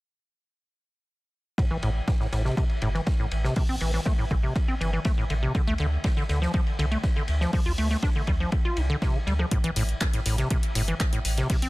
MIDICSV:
0, 0, Header, 1, 4, 480
1, 0, Start_track
1, 0, Key_signature, 0, "minor"
1, 0, Tempo, 495868
1, 1530, Time_signature, 4, 2, 24, 8
1, 11317, End_track
2, 0, Start_track
2, 0, Title_t, "Acid bass"
2, 0, Program_c, 0, 38
2, 1531, Note_on_c, 0, 45, 81
2, 1598, Note_off_c, 0, 45, 0
2, 1652, Note_on_c, 0, 52, 96
2, 1718, Note_off_c, 0, 52, 0
2, 1771, Note_on_c, 0, 45, 96
2, 1838, Note_off_c, 0, 45, 0
2, 2011, Note_on_c, 0, 45, 83
2, 2051, Note_off_c, 0, 45, 0
2, 2133, Note_on_c, 0, 45, 74
2, 2198, Note_off_c, 0, 45, 0
2, 2251, Note_on_c, 0, 45, 72
2, 2351, Note_off_c, 0, 45, 0
2, 2373, Note_on_c, 0, 48, 75
2, 2471, Note_off_c, 0, 48, 0
2, 2491, Note_on_c, 0, 48, 80
2, 2558, Note_off_c, 0, 48, 0
2, 2732, Note_on_c, 0, 45, 97
2, 2798, Note_off_c, 0, 45, 0
2, 2854, Note_on_c, 0, 52, 75
2, 2918, Note_off_c, 0, 52, 0
2, 3094, Note_on_c, 0, 45, 72
2, 3158, Note_off_c, 0, 45, 0
2, 3334, Note_on_c, 0, 48, 76
2, 3431, Note_off_c, 0, 48, 0
2, 3451, Note_on_c, 0, 48, 79
2, 3518, Note_off_c, 0, 48, 0
2, 3572, Note_on_c, 0, 60, 73
2, 3637, Note_off_c, 0, 60, 0
2, 3691, Note_on_c, 0, 52, 74
2, 3791, Note_off_c, 0, 52, 0
2, 3812, Note_on_c, 0, 52, 75
2, 3878, Note_off_c, 0, 52, 0
2, 3930, Note_on_c, 0, 57, 83
2, 3997, Note_off_c, 0, 57, 0
2, 4052, Note_on_c, 0, 45, 72
2, 4117, Note_off_c, 0, 45, 0
2, 4170, Note_on_c, 0, 50, 73
2, 4211, Note_off_c, 0, 50, 0
2, 4292, Note_on_c, 0, 48, 74
2, 4390, Note_off_c, 0, 48, 0
2, 4533, Note_on_c, 0, 60, 74
2, 4598, Note_off_c, 0, 60, 0
2, 4652, Note_on_c, 0, 52, 72
2, 4752, Note_off_c, 0, 52, 0
2, 4773, Note_on_c, 0, 52, 72
2, 4838, Note_off_c, 0, 52, 0
2, 4891, Note_on_c, 0, 57, 79
2, 4958, Note_off_c, 0, 57, 0
2, 5012, Note_on_c, 0, 45, 76
2, 5077, Note_off_c, 0, 45, 0
2, 5131, Note_on_c, 0, 50, 73
2, 5171, Note_off_c, 0, 50, 0
2, 5253, Note_on_c, 0, 48, 73
2, 5350, Note_off_c, 0, 48, 0
2, 5492, Note_on_c, 0, 57, 98
2, 5557, Note_off_c, 0, 57, 0
2, 5611, Note_on_c, 0, 50, 100
2, 5678, Note_off_c, 0, 50, 0
2, 5851, Note_on_c, 0, 50, 82
2, 5891, Note_off_c, 0, 50, 0
2, 5972, Note_on_c, 0, 50, 73
2, 6038, Note_off_c, 0, 50, 0
2, 6092, Note_on_c, 0, 50, 72
2, 6192, Note_off_c, 0, 50, 0
2, 6213, Note_on_c, 0, 53, 77
2, 6310, Note_off_c, 0, 53, 0
2, 6331, Note_on_c, 0, 53, 82
2, 6398, Note_off_c, 0, 53, 0
2, 6571, Note_on_c, 0, 50, 96
2, 6638, Note_off_c, 0, 50, 0
2, 6693, Note_on_c, 0, 57, 74
2, 6758, Note_off_c, 0, 57, 0
2, 6933, Note_on_c, 0, 50, 74
2, 6998, Note_off_c, 0, 50, 0
2, 7174, Note_on_c, 0, 53, 76
2, 7271, Note_off_c, 0, 53, 0
2, 7292, Note_on_c, 0, 53, 82
2, 7358, Note_off_c, 0, 53, 0
2, 7413, Note_on_c, 0, 65, 72
2, 7478, Note_off_c, 0, 65, 0
2, 7533, Note_on_c, 0, 57, 74
2, 7632, Note_off_c, 0, 57, 0
2, 7654, Note_on_c, 0, 57, 74
2, 7718, Note_off_c, 0, 57, 0
2, 7772, Note_on_c, 0, 62, 82
2, 7838, Note_off_c, 0, 62, 0
2, 7894, Note_on_c, 0, 50, 73
2, 7959, Note_off_c, 0, 50, 0
2, 8013, Note_on_c, 0, 55, 71
2, 8052, Note_off_c, 0, 55, 0
2, 8134, Note_on_c, 0, 53, 76
2, 8231, Note_off_c, 0, 53, 0
2, 8373, Note_on_c, 0, 65, 74
2, 8492, Note_on_c, 0, 62, 74
2, 8507, Note_off_c, 0, 65, 0
2, 8532, Note_off_c, 0, 62, 0
2, 8613, Note_on_c, 0, 50, 99
2, 8678, Note_off_c, 0, 50, 0
2, 8732, Note_on_c, 0, 48, 81
2, 8853, Note_on_c, 0, 50, 74
2, 8868, Note_off_c, 0, 48, 0
2, 8892, Note_off_c, 0, 50, 0
2, 8971, Note_on_c, 0, 55, 74
2, 9038, Note_off_c, 0, 55, 0
2, 9093, Note_on_c, 0, 53, 73
2, 9158, Note_off_c, 0, 53, 0
2, 9211, Note_on_c, 0, 45, 79
2, 9278, Note_off_c, 0, 45, 0
2, 9332, Note_on_c, 0, 52, 98
2, 9397, Note_off_c, 0, 52, 0
2, 9450, Note_on_c, 0, 45, 100
2, 9517, Note_off_c, 0, 45, 0
2, 9690, Note_on_c, 0, 45, 86
2, 9730, Note_off_c, 0, 45, 0
2, 9812, Note_on_c, 0, 45, 75
2, 9877, Note_off_c, 0, 45, 0
2, 9930, Note_on_c, 0, 45, 74
2, 10030, Note_off_c, 0, 45, 0
2, 10050, Note_on_c, 0, 48, 76
2, 10149, Note_off_c, 0, 48, 0
2, 10410, Note_on_c, 0, 45, 94
2, 10477, Note_off_c, 0, 45, 0
2, 10531, Note_on_c, 0, 52, 73
2, 10597, Note_off_c, 0, 52, 0
2, 10772, Note_on_c, 0, 45, 76
2, 10837, Note_off_c, 0, 45, 0
2, 11012, Note_on_c, 0, 48, 75
2, 11110, Note_off_c, 0, 48, 0
2, 11252, Note_on_c, 0, 60, 72
2, 11317, Note_off_c, 0, 60, 0
2, 11317, End_track
3, 0, Start_track
3, 0, Title_t, "Sub bass"
3, 0, Program_c, 1, 38
3, 1652, Note_on_c, 1, 33, 96
3, 1736, Note_off_c, 1, 33, 0
3, 1771, Note_on_c, 1, 33, 95
3, 1942, Note_off_c, 1, 33, 0
3, 2251, Note_on_c, 1, 33, 90
3, 2422, Note_off_c, 1, 33, 0
3, 2730, Note_on_c, 1, 31, 91
3, 2902, Note_off_c, 1, 31, 0
3, 3210, Note_on_c, 1, 33, 99
3, 3382, Note_off_c, 1, 33, 0
3, 3572, Note_on_c, 1, 33, 94
3, 3657, Note_off_c, 1, 33, 0
3, 3691, Note_on_c, 1, 33, 96
3, 3862, Note_off_c, 1, 33, 0
3, 4171, Note_on_c, 1, 33, 88
3, 4342, Note_off_c, 1, 33, 0
3, 4650, Note_on_c, 1, 31, 88
3, 4822, Note_off_c, 1, 31, 0
3, 5131, Note_on_c, 1, 33, 97
3, 5302, Note_off_c, 1, 33, 0
3, 5492, Note_on_c, 1, 38, 92
3, 5576, Note_off_c, 1, 38, 0
3, 5610, Note_on_c, 1, 38, 96
3, 5782, Note_off_c, 1, 38, 0
3, 6091, Note_on_c, 1, 38, 87
3, 6262, Note_off_c, 1, 38, 0
3, 6570, Note_on_c, 1, 36, 89
3, 6742, Note_off_c, 1, 36, 0
3, 7051, Note_on_c, 1, 38, 98
3, 7222, Note_off_c, 1, 38, 0
3, 7412, Note_on_c, 1, 38, 96
3, 7496, Note_off_c, 1, 38, 0
3, 7530, Note_on_c, 1, 38, 93
3, 7702, Note_off_c, 1, 38, 0
3, 8011, Note_on_c, 1, 38, 91
3, 8182, Note_off_c, 1, 38, 0
3, 8490, Note_on_c, 1, 36, 88
3, 8662, Note_off_c, 1, 36, 0
3, 8970, Note_on_c, 1, 38, 100
3, 9142, Note_off_c, 1, 38, 0
3, 9331, Note_on_c, 1, 33, 100
3, 9416, Note_off_c, 1, 33, 0
3, 9450, Note_on_c, 1, 33, 97
3, 9622, Note_off_c, 1, 33, 0
3, 9930, Note_on_c, 1, 33, 88
3, 10102, Note_off_c, 1, 33, 0
3, 10409, Note_on_c, 1, 31, 90
3, 10582, Note_off_c, 1, 31, 0
3, 10890, Note_on_c, 1, 33, 101
3, 11062, Note_off_c, 1, 33, 0
3, 11252, Note_on_c, 1, 33, 98
3, 11317, Note_off_c, 1, 33, 0
3, 11317, End_track
4, 0, Start_track
4, 0, Title_t, "Drums"
4, 1531, Note_on_c, 9, 36, 113
4, 1537, Note_on_c, 9, 51, 87
4, 1627, Note_off_c, 9, 36, 0
4, 1633, Note_off_c, 9, 51, 0
4, 1767, Note_on_c, 9, 51, 60
4, 1864, Note_off_c, 9, 51, 0
4, 2011, Note_on_c, 9, 36, 110
4, 2011, Note_on_c, 9, 51, 75
4, 2012, Note_on_c, 9, 38, 107
4, 2107, Note_off_c, 9, 36, 0
4, 2108, Note_off_c, 9, 51, 0
4, 2109, Note_off_c, 9, 38, 0
4, 2133, Note_on_c, 9, 38, 37
4, 2230, Note_off_c, 9, 38, 0
4, 2248, Note_on_c, 9, 38, 46
4, 2250, Note_on_c, 9, 51, 61
4, 2345, Note_off_c, 9, 38, 0
4, 2347, Note_off_c, 9, 51, 0
4, 2373, Note_on_c, 9, 38, 41
4, 2470, Note_off_c, 9, 38, 0
4, 2491, Note_on_c, 9, 36, 109
4, 2497, Note_on_c, 9, 51, 80
4, 2587, Note_off_c, 9, 36, 0
4, 2594, Note_off_c, 9, 51, 0
4, 2608, Note_on_c, 9, 51, 40
4, 2705, Note_off_c, 9, 51, 0
4, 2726, Note_on_c, 9, 51, 62
4, 2823, Note_off_c, 9, 51, 0
4, 2859, Note_on_c, 9, 51, 40
4, 2956, Note_off_c, 9, 51, 0
4, 2967, Note_on_c, 9, 38, 103
4, 2969, Note_on_c, 9, 51, 75
4, 2971, Note_on_c, 9, 36, 110
4, 3064, Note_off_c, 9, 38, 0
4, 3066, Note_off_c, 9, 51, 0
4, 3067, Note_off_c, 9, 36, 0
4, 3208, Note_on_c, 9, 51, 61
4, 3305, Note_off_c, 9, 51, 0
4, 3334, Note_on_c, 9, 38, 47
4, 3431, Note_off_c, 9, 38, 0
4, 3446, Note_on_c, 9, 46, 76
4, 3451, Note_on_c, 9, 36, 121
4, 3543, Note_off_c, 9, 46, 0
4, 3548, Note_off_c, 9, 36, 0
4, 3683, Note_on_c, 9, 51, 59
4, 3780, Note_off_c, 9, 51, 0
4, 3820, Note_on_c, 9, 38, 35
4, 3917, Note_off_c, 9, 38, 0
4, 3925, Note_on_c, 9, 38, 102
4, 3931, Note_on_c, 9, 36, 109
4, 3932, Note_on_c, 9, 51, 79
4, 4022, Note_off_c, 9, 38, 0
4, 4027, Note_off_c, 9, 36, 0
4, 4028, Note_off_c, 9, 51, 0
4, 4170, Note_on_c, 9, 36, 59
4, 4174, Note_on_c, 9, 51, 58
4, 4267, Note_off_c, 9, 36, 0
4, 4271, Note_off_c, 9, 51, 0
4, 4411, Note_on_c, 9, 36, 113
4, 4415, Note_on_c, 9, 51, 84
4, 4507, Note_off_c, 9, 36, 0
4, 4511, Note_off_c, 9, 51, 0
4, 4658, Note_on_c, 9, 51, 67
4, 4755, Note_off_c, 9, 51, 0
4, 4886, Note_on_c, 9, 51, 81
4, 4891, Note_on_c, 9, 36, 115
4, 4891, Note_on_c, 9, 38, 105
4, 4982, Note_off_c, 9, 51, 0
4, 4987, Note_off_c, 9, 36, 0
4, 4988, Note_off_c, 9, 38, 0
4, 5129, Note_on_c, 9, 51, 63
4, 5226, Note_off_c, 9, 51, 0
4, 5371, Note_on_c, 9, 36, 121
4, 5372, Note_on_c, 9, 51, 83
4, 5467, Note_off_c, 9, 36, 0
4, 5469, Note_off_c, 9, 51, 0
4, 5597, Note_on_c, 9, 51, 63
4, 5694, Note_off_c, 9, 51, 0
4, 5846, Note_on_c, 9, 51, 80
4, 5851, Note_on_c, 9, 36, 115
4, 5852, Note_on_c, 9, 38, 110
4, 5943, Note_off_c, 9, 51, 0
4, 5947, Note_off_c, 9, 36, 0
4, 5949, Note_off_c, 9, 38, 0
4, 5968, Note_on_c, 9, 38, 40
4, 6065, Note_off_c, 9, 38, 0
4, 6091, Note_on_c, 9, 38, 47
4, 6091, Note_on_c, 9, 51, 58
4, 6188, Note_off_c, 9, 38, 0
4, 6188, Note_off_c, 9, 51, 0
4, 6217, Note_on_c, 9, 38, 42
4, 6314, Note_off_c, 9, 38, 0
4, 6328, Note_on_c, 9, 51, 77
4, 6331, Note_on_c, 9, 36, 111
4, 6425, Note_off_c, 9, 51, 0
4, 6427, Note_off_c, 9, 36, 0
4, 6453, Note_on_c, 9, 51, 39
4, 6550, Note_off_c, 9, 51, 0
4, 6576, Note_on_c, 9, 51, 69
4, 6673, Note_off_c, 9, 51, 0
4, 6694, Note_on_c, 9, 51, 43
4, 6791, Note_off_c, 9, 51, 0
4, 6809, Note_on_c, 9, 38, 101
4, 6811, Note_on_c, 9, 36, 118
4, 6811, Note_on_c, 9, 51, 86
4, 6906, Note_off_c, 9, 38, 0
4, 6908, Note_off_c, 9, 36, 0
4, 6908, Note_off_c, 9, 51, 0
4, 7045, Note_on_c, 9, 51, 62
4, 7142, Note_off_c, 9, 51, 0
4, 7172, Note_on_c, 9, 38, 46
4, 7268, Note_off_c, 9, 38, 0
4, 7289, Note_on_c, 9, 46, 70
4, 7291, Note_on_c, 9, 36, 121
4, 7386, Note_off_c, 9, 46, 0
4, 7388, Note_off_c, 9, 36, 0
4, 7530, Note_on_c, 9, 51, 60
4, 7627, Note_off_c, 9, 51, 0
4, 7644, Note_on_c, 9, 38, 39
4, 7741, Note_off_c, 9, 38, 0
4, 7768, Note_on_c, 9, 51, 85
4, 7771, Note_on_c, 9, 36, 109
4, 7777, Note_on_c, 9, 38, 115
4, 7865, Note_off_c, 9, 51, 0
4, 7868, Note_off_c, 9, 36, 0
4, 7874, Note_off_c, 9, 38, 0
4, 8006, Note_on_c, 9, 51, 62
4, 8011, Note_on_c, 9, 36, 60
4, 8103, Note_off_c, 9, 51, 0
4, 8108, Note_off_c, 9, 36, 0
4, 8247, Note_on_c, 9, 51, 81
4, 8251, Note_on_c, 9, 36, 113
4, 8344, Note_off_c, 9, 51, 0
4, 8348, Note_off_c, 9, 36, 0
4, 8486, Note_on_c, 9, 51, 68
4, 8583, Note_off_c, 9, 51, 0
4, 8731, Note_on_c, 9, 36, 116
4, 8731, Note_on_c, 9, 51, 88
4, 8733, Note_on_c, 9, 38, 103
4, 8827, Note_off_c, 9, 36, 0
4, 8827, Note_off_c, 9, 51, 0
4, 8830, Note_off_c, 9, 38, 0
4, 8976, Note_on_c, 9, 51, 59
4, 9073, Note_off_c, 9, 51, 0
4, 9091, Note_on_c, 9, 37, 56
4, 9188, Note_off_c, 9, 37, 0
4, 9210, Note_on_c, 9, 36, 110
4, 9210, Note_on_c, 9, 42, 74
4, 9210, Note_on_c, 9, 51, 74
4, 9307, Note_off_c, 9, 36, 0
4, 9307, Note_off_c, 9, 42, 0
4, 9307, Note_off_c, 9, 51, 0
4, 9332, Note_on_c, 9, 42, 48
4, 9429, Note_off_c, 9, 42, 0
4, 9449, Note_on_c, 9, 46, 97
4, 9457, Note_on_c, 9, 51, 68
4, 9546, Note_off_c, 9, 46, 0
4, 9554, Note_off_c, 9, 51, 0
4, 9571, Note_on_c, 9, 42, 34
4, 9668, Note_off_c, 9, 42, 0
4, 9684, Note_on_c, 9, 51, 80
4, 9689, Note_on_c, 9, 42, 74
4, 9690, Note_on_c, 9, 36, 110
4, 9692, Note_on_c, 9, 39, 109
4, 9694, Note_on_c, 9, 38, 104
4, 9781, Note_off_c, 9, 51, 0
4, 9786, Note_off_c, 9, 42, 0
4, 9787, Note_off_c, 9, 36, 0
4, 9789, Note_off_c, 9, 39, 0
4, 9790, Note_off_c, 9, 38, 0
4, 9811, Note_on_c, 9, 42, 49
4, 9812, Note_on_c, 9, 38, 39
4, 9907, Note_off_c, 9, 42, 0
4, 9908, Note_off_c, 9, 38, 0
4, 9929, Note_on_c, 9, 46, 99
4, 9930, Note_on_c, 9, 38, 42
4, 9934, Note_on_c, 9, 51, 60
4, 10026, Note_off_c, 9, 46, 0
4, 10027, Note_off_c, 9, 38, 0
4, 10031, Note_off_c, 9, 51, 0
4, 10050, Note_on_c, 9, 42, 33
4, 10054, Note_on_c, 9, 38, 41
4, 10147, Note_off_c, 9, 42, 0
4, 10150, Note_off_c, 9, 38, 0
4, 10169, Note_on_c, 9, 42, 75
4, 10169, Note_on_c, 9, 51, 84
4, 10170, Note_on_c, 9, 36, 107
4, 10266, Note_off_c, 9, 42, 0
4, 10266, Note_off_c, 9, 51, 0
4, 10267, Note_off_c, 9, 36, 0
4, 10290, Note_on_c, 9, 42, 50
4, 10294, Note_on_c, 9, 51, 43
4, 10387, Note_off_c, 9, 42, 0
4, 10391, Note_off_c, 9, 51, 0
4, 10409, Note_on_c, 9, 46, 99
4, 10409, Note_on_c, 9, 51, 68
4, 10505, Note_off_c, 9, 51, 0
4, 10506, Note_off_c, 9, 46, 0
4, 10531, Note_on_c, 9, 42, 34
4, 10534, Note_on_c, 9, 51, 44
4, 10628, Note_off_c, 9, 42, 0
4, 10630, Note_off_c, 9, 51, 0
4, 10649, Note_on_c, 9, 42, 71
4, 10650, Note_on_c, 9, 36, 112
4, 10651, Note_on_c, 9, 51, 79
4, 10652, Note_on_c, 9, 39, 107
4, 10653, Note_on_c, 9, 38, 108
4, 10746, Note_off_c, 9, 42, 0
4, 10747, Note_off_c, 9, 36, 0
4, 10748, Note_off_c, 9, 51, 0
4, 10749, Note_off_c, 9, 39, 0
4, 10750, Note_off_c, 9, 38, 0
4, 10771, Note_on_c, 9, 42, 47
4, 10868, Note_off_c, 9, 42, 0
4, 10888, Note_on_c, 9, 51, 64
4, 10889, Note_on_c, 9, 46, 99
4, 10985, Note_off_c, 9, 51, 0
4, 10986, Note_off_c, 9, 46, 0
4, 11011, Note_on_c, 9, 42, 34
4, 11017, Note_on_c, 9, 38, 50
4, 11108, Note_off_c, 9, 42, 0
4, 11113, Note_off_c, 9, 38, 0
4, 11129, Note_on_c, 9, 42, 75
4, 11130, Note_on_c, 9, 36, 112
4, 11130, Note_on_c, 9, 46, 78
4, 11226, Note_off_c, 9, 42, 0
4, 11226, Note_off_c, 9, 46, 0
4, 11227, Note_off_c, 9, 36, 0
4, 11251, Note_on_c, 9, 42, 49
4, 11317, Note_off_c, 9, 42, 0
4, 11317, End_track
0, 0, End_of_file